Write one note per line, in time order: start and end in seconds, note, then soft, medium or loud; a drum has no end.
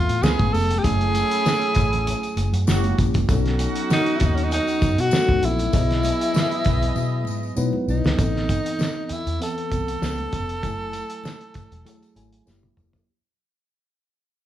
0.00 0.24 E3 medium
0.00 0.23 A3 medium
0.00 0.24 B3 medium
0.00 0.25 C4 medium
0.00 0.25 F4 medium
0.00 0.25 A4 medium
0.09 0.20 A2 loud
0.09 closed hi-hat medium
0.22 0.36 C#2 loud
0.22 0.76 F3 medium
0.22 0.76 A3 medium
0.22 0.53 B3 medium
0.22 0.76 B3 medium
0.22 0.77 C#4 medium
0.22 0.53 F4 medium
0.22 0.53 G#4 medium
0.22 0.55 G#4 loud
0.22 0.77 G#4 medium
0.22 snare loud
0.22 tambourine loud
0.22 high conga medium
0.39 0.51 A1 medium
0.39 kick loud
0.39 closed hi-hat soft
0.39 high conga medium
0.53 0.77 F1 loud
0.53 0.80 A4 loud
0.53 open hi-hat medium
0.53 tambourine soft
0.71 closed hi-hat medium
0.71 high conga medium
0.79 0.85 G4 medium
0.83 1.21 F#1 loud
0.83 1.89 F#3 medium
0.83 2.34 A3 medium
0.83 1.89 A3 medium
0.83 2.34 C#4 medium
0.83 1.90 C#4 medium
0.83 2.34 E4 medium
0.83 1.90 E4 medium
0.83 2.67 G#4 loud
0.83 1.90 G#4 medium
0.83 kick loud
0.83 closed hi-hat medium
0.83 tambourine medium
1.01 closed hi-hat soft
1.15 closed hi-hat medium
1.15 tambourine medium
1.15 muted conga medium
1.31 closed hi-hat medium
1.46 snare loud
1.46 tambourine medium
1.46 high conga medium
1.61 closed hi-hat soft
1.75 2.13 A1 loud
1.75 kick loud
1.75 closed hi-hat medium
1.75 tambourine soft
1.75 low conga medium
1.93 closed hi-hat medium
1.93 low conga medium
2.07 closed hi-hat medium
2.07 tambourine medium
2.07 low conga medium
2.23 closed hi-hat soft
2.23 tambourine soft
2.36 2.50 F#1 loud
2.36 closed hi-hat medium
2.36 tambourine medium
2.36 muted conga medium
2.53 2.64 F#2 loud
2.53 closed hi-hat medium
2.53 tambourine soft
2.67 2.92 F#1 loud
2.67 3.20 F#3 medium
2.67 3.20 A#3 medium
2.67 2.97 A#3 medium
2.67 2.98 C#4 medium
2.67 3.21 C#4 medium
2.67 3.21 E4 medium
2.67 2.98 F#4 medium
2.67 2.75 F#4 medium
2.67 snare loud
2.67 tambourine loud
2.67 high conga medium
2.75 3.24 G4 loud
2.84 closed hi-hat soft
2.84 high conga medium
2.98 3.23 A#1 loud
2.98 kick loud
2.98 closed hi-hat medium
2.98 tambourine soft
3.14 kick loud
3.14 closed hi-hat medium
3.14 tambourine soft
3.14 high conga medium
3.28 3.66 B1 loud
3.28 4.34 F#3 medium
3.28 4.34 B3 medium
3.28 4.34 C#4 medium
3.28 5.39 C#4 medium
3.28 5.39 D#4 medium
3.28 4.35 D#4 medium
3.28 5.39 F#4 loud
3.28 4.35 A4 loud
3.28 kick loud
3.28 closed hi-hat medium
3.28 tambourine medium
3.46 snare soft
3.46 closed hi-hat soft
3.59 closed hi-hat medium
3.59 tambourine medium
3.59 muted conga medium
3.75 closed hi-hat medium
3.90 4.18 D#4 loud
3.90 snare loud
3.90 tambourine medium
3.90 high conga medium
4.06 closed hi-hat soft
4.16 4.27 E4 medium
4.16 closed hi-hat medium
4.21 4.58 D#2 loud
4.21 kick loud
4.21 tambourine soft
4.21 low conga medium
4.25 4.36 D#4 medium
4.35 4.45 C#4 medium
4.35 closed hi-hat soft
4.44 4.52 D#4 medium
4.51 5.02 D#4 loud
4.51 closed hi-hat loud
4.51 tambourine soft
4.67 closed hi-hat soft
4.67 tambourine soft
4.81 4.95 F#2 medium
4.81 kick loud
4.81 closed hi-hat medium
4.81 tambourine medium
4.81 muted conga medium
4.98 5.09 B2 loud
4.98 5.46 F#4 loud
4.98 closed hi-hat medium
5.11 5.65 F#3 medium
5.11 5.65 B3 medium
5.11 5.65 C#4 medium
5.11 5.66 D#4 medium
5.11 5.66 A4 medium
5.11 snare loud
5.11 tambourine loud
5.11 high conga medium
5.29 5.40 C#2 loud
5.29 kick loud
5.29 high conga medium
5.43 5.67 A#1 loud
5.43 7.58 E4 loud
5.43 closed hi-hat medium
5.43 tambourine soft
5.59 closed hi-hat medium
5.59 tambourine soft
5.59 high conga medium
5.72 6.11 B1 loud
5.72 6.78 F#3 medium
5.72 6.78 B3 medium
5.72 7.84 B3 medium
5.72 6.79 E4 medium
5.72 7.83 G#4 loud
5.72 6.79 G#4 medium
5.72 7.83 D#5 medium
5.72 6.79 D#5 medium
5.72 kick loud
5.72 closed hi-hat medium
5.72 tambourine medium
5.91 snare soft
5.91 closed hi-hat soft
6.03 closed hi-hat medium
6.03 tambourine medium
6.03 muted conga medium
6.21 closed hi-hat medium
6.34 snare loud
6.34 tambourine medium
6.34 high conga medium
6.51 closed hi-hat soft
6.65 6.90 B1 loud
6.65 kick loud
6.65 closed hi-hat medium
6.65 tambourine soft
6.65 low conga medium
6.82 closed hi-hat soft
6.82 low conga medium
6.95 7.27 B2 loud
6.95 tambourine medium
6.95 low conga medium
7.25 7.51 G#2 medium
7.25 tambourine medium
7.25 muted conga medium
7.43 tambourine soft
7.56 7.70 B2 medium
7.56 8.09 F#3 medium
7.56 8.10 B3 medium
7.56 8.10 D#4 medium
7.56 8.10 E4 medium
7.56 8.10 B4 medium
7.56 tambourine loud
7.56 high conga medium
7.73 high conga medium
7.88 8.01 B1 loud
7.88 9.06 D#4 medium
7.88 tambourine soft
8.04 8.16 C#2 medium
8.04 snare loud
8.04 tambourine soft
8.17 8.56 A1 loud
8.17 9.23 E3 medium
8.17 9.23 B3 medium
8.17 9.23 C4 medium
8.17 9.24 A4 medium
8.17 kick loud
8.17 closed hi-hat medium
8.17 tambourine medium
8.17 muted conga soft
8.36 snare soft
8.49 kick medium
8.49 closed hi-hat medium
8.49 tambourine soft
8.49 muted conga soft
8.66 closed hi-hat medium
8.79 snare loud
8.79 tambourine medium
8.79 high conga medium
9.06 9.14 D#4 medium
9.06 closed hi-hat medium
9.10 9.42 E4 loud
9.10 muted fingered electric bass stroke medium
9.10 tambourine soft
9.10 low conga medium
9.27 9.38 E2 medium
9.27 closed hi-hat soft
9.27 low conga medium
9.40 9.67 E3 medium
9.40 9.67 B3 medium
9.40 9.67 C4 medium
9.40 9.68 A4 medium
9.40 12.44 A4 loud
9.40 closed hi-hat medium
9.40 tambourine soft
9.58 closed hi-hat soft
9.70 9.96 C2 medium
9.70 10.02 E3 medium
9.70 10.01 B3 medium
9.70 10.02 C4 medium
9.70 10.03 A4 medium
9.70 kick medium
9.70 closed hi-hat medium
9.70 tambourine medium
9.70 muted conga medium
9.88 closed hi-hat medium
9.88 tambourine soft
10.01 10.26 C#2 loud
10.01 10.54 F3 medium
10.01 10.55 B3 medium
10.01 10.55 C#4 medium
10.01 10.09 G#4 medium
10.01 snare loud
10.01 tambourine loud
10.01 high conga medium
10.10 10.59 A4 medium
10.18 closed hi-hat soft
10.18 high conga medium
10.33 10.63 F1 medium
10.33 kick medium
10.33 closed hi-hat medium
10.33 tambourine soft
10.49 closed hi-hat medium
10.62 11.00 F#1 loud
10.62 11.68 F#3 medium
10.62 11.68 A3 medium
10.62 11.69 E4 medium
10.62 11.69 G#5 medium
10.62 kick loud
10.62 closed hi-hat medium
10.62 tambourine medium
10.62 muted conga soft
10.93 closed hi-hat medium
10.93 tambourine soft
10.93 muted conga soft
11.10 closed hi-hat medium
11.24 snare loud
11.24 tambourine medium
11.24 high conga medium
11.41 closed hi-hat soft
11.54 muted fingered electric bass stroke soft
11.54 kick medium
11.54 closed hi-hat medium
11.54 tambourine soft
11.54 low conga medium
11.72 11.83 E1 medium
11.72 closed hi-hat soft
11.72 low conga medium
11.84 12.11 F#3 medium
11.84 12.12 A3 medium
11.84 12.12 E4 medium
11.84 12.12 G#4 medium
11.84 closed hi-hat medium
11.84 tambourine soft
11.84 low conga medium
12.03 closed hi-hat soft
12.03 tambourine soft
12.15 12.40 G#1 medium
12.15 12.44 F#3 medium
12.15 12.47 A3 medium
12.15 12.46 E4 medium
12.15 12.47 G#5 loud
12.15 closed hi-hat medium
12.15 tambourine soft
12.15 muted conga medium
12.33 closed hi-hat medium
12.33 tambourine soft
12.45 12.71 F#1 medium
12.45 12.99 F#3 medium
12.45 12.99 A#3 medium
12.45 13.00 E4 medium
12.45 13.00 G4 loud
12.45 snare soft
12.45 tambourine medium
12.45 high conga medium
12.63 high tom medium
12.63 high conga medium
12.77 13.01 F1 medium
12.77 mid tom medium
12.77 tambourine soft
12.93 floor tom medium
12.93 tambourine soft